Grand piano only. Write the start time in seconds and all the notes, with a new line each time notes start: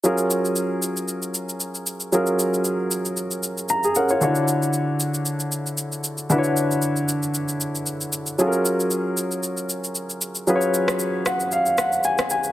0.04 F#3 C#4 F4 G#4 A#4
2.12 F#3 C#4 F4 G#4 A#4
3.70 A#5
3.84 G#4
3.96 C#4 A#4 F#5
4.10 F4 C#5
4.21 D3 D4 E4 F#4 C#5
6.30 D3 D4 E4 F#4 B4
6.38 C#5
8.38 F#3 C#4 F4 G#4 A4
8.47 A#4
10.47 F#3 C#4 F4 G#4 B4
10.56 C#5
11.27 F#5
11.53 F5
11.79 F#5
12.05 G#5
12.31 G#5